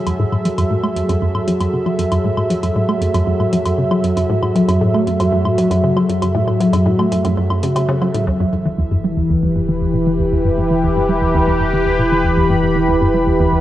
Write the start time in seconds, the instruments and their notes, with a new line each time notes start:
Already playing: analog synth pad F#3 F#4 G#4 A4 E5
0.07 synth arpeggio sound F#2, closed hi-hat, low woodblock
0.20 synth arpeggio sound A2
0.32 synth arpeggio sound A2, low woodblock
0.45 synth arpeggio sound F#3, closed hi-hat
0.58 synth arpeggio sound F#2, closed hi-hat, low woodblock
0.71 synth arpeggio sound A2
0.83 synth arpeggio sound A3, low woodblock
0.96 synth arpeggio sound F#2, closed hi-hat
1.09 synth arpeggio sound F#2, closed hi-hat, low woodblock
1.22 synth arpeggio sound F#2
1.35 synth arpeggio sound A2, low woodblock
1.48 synth arpeggio sound F#3, closed hi-hat
1.60 synth arpeggio sound F#2, closed hi-hat, low woodblock
1.73 synth arpeggio sound C#3
1.86 synth arpeggio sound F#3, low woodblock
1.99 synth arpeggio sound F#2, closed hi-hat
2.12 synth arpeggio sound F#2, closed hi-hat, low woodblock
2.25 synth arpeggio sound A2
2.37 synth arpeggio sound A2, low woodblock
2.50 synth arpeggio sound F#3, closed hi-hat
2.63 synth arpeggio sound F#2, closed hi-hat, low woodblock
2.76 synth arpeggio sound A2
2.89 synth arpeggio sound A3, low woodblock
3.01 synth arpeggio sound F#2, closed hi-hat
3.14 synth arpeggio sound F#2, closed hi-hat, low woodblock
3.27 synth arpeggio sound F#2
3.40 synth arpeggio sound A2, low woodblock
3.53 synth arpeggio sound F#3, closed hi-hat
3.66 synth arpeggio sound F#2, closed hi-hat, low woodblock
3.78 synth arpeggio sound C#3
3.91 synth arpeggio sound F#3, low woodblock
4.04 synth arpeggio sound F#2, closed hi-hat
4.17 synth arpeggio sound F#2, closed hi-hat, low woodblock
4.30 synth arpeggio sound A2
4.42 synth arpeggio sound A2, low woodblock
4.55 synth arpeggio sound F#3, closed hi-hat
4.68 synth arpeggio sound F#2, closed hi-hat, low woodblock
4.81 synth arpeggio sound A2
4.94 synth arpeggio sound A3, low woodblock
5.06 synth arpeggio sound F#2, closed hi-hat
5.19 synth arpeggio sound F#2, closed hi-hat, low woodblock
5.32 synth arpeggio sound F#2
5.45 synth arpeggio sound A2, low woodblock
5.58 synth arpeggio sound F#3, closed hi-hat
5.71 synth arpeggio sound F#2, closed hi-hat, low woodblock
5.84 synth arpeggio sound C#3
5.96 synth arpeggio sound F#3, low woodblock
6.09 synth arpeggio sound F#2, closed hi-hat
6.22 synth arpeggio sound F#2, closed hi-hat, low woodblock
6.35 synth arpeggio sound A2
6.48 synth arpeggio sound A2, low woodblock
6.60 synth arpeggio sound F#3, closed hi-hat
6.73 synth arpeggio sound F#2, closed hi-hat, low woodblock
6.86 synth arpeggio sound A2
6.99 synth arpeggio sound A3, low woodblock
7.12 synth arpeggio sound F#2, closed hi-hat
7.25 synth arpeggio sound F#2, closed hi-hat, low woodblock
7.37 synth arpeggio sound F#2
7.50 synth arpeggio sound F#2, low woodblock
7.63 synth arpeggio sound C#3, closed hi-hat
7.76 synth arpeggio sound C#3, closed hi-hat, low woodblock
7.89 synth arpeggio sound C#3
8.02 synth arpeggio sound F#3, low woodblock
8.14 synth arpeggio sound A2, closed hi-hat
8.27 sub bass E1, synth arpeggio sound E2, analog synth pad E3
8.40 synth arpeggio sound G2, analog synth pad E4
8.53 synth arpeggio sound G2
8.66 synth arpeggio sound E3
8.78 synth arpeggio sound E2, analog synth pad G4
8.91 synth arpeggio sound G2
9.00 synth arpeggio sound G3, analog synth pad B4
9.17 synth arpeggio sound E2
9.30 synth arpeggio sound E2, analog synth pad B5
9.43 synth arpeggio sound E2
9.56 synth arpeggio sound G2
9.68 synth arpeggio sound E3
9.81 synth arpeggio sound E2
9.94 synth arpeggio sound B2
10.07 synth arpeggio sound E3
10.19 synth arpeggio sound E2
10.32 synth arpeggio sound E2
10.45 synth arpeggio sound G2
10.58 synth arpeggio sound G2
10.71 synth arpeggio sound E3
10.83 synth arpeggio sound E2
10.96 synth arpeggio sound G2
11.09 synth arpeggio sound G3
11.22 synth arpeggio sound E2
11.35 synth arpeggio sound E2
11.48 synth arpeggio sound E2
11.60 synth arpeggio sound G2
11.73 synth arpeggio sound E3
11.86 synth arpeggio sound E2
11.99 synth arpeggio sound B2
12.12 synth arpeggio sound E3
12.24 synth arpeggio sound E2
12.37 synth arpeggio sound E2
12.50 synth arpeggio sound G2
12.63 synth arpeggio sound G2
12.76 synth arpeggio sound E3
12.89 synth arpeggio sound E2
13.01 synth arpeggio sound G2
13.14 synth arpeggio sound G3
13.27 synth arpeggio sound E2
13.40 synth arpeggio sound E2
13.53 synth arpeggio sound E2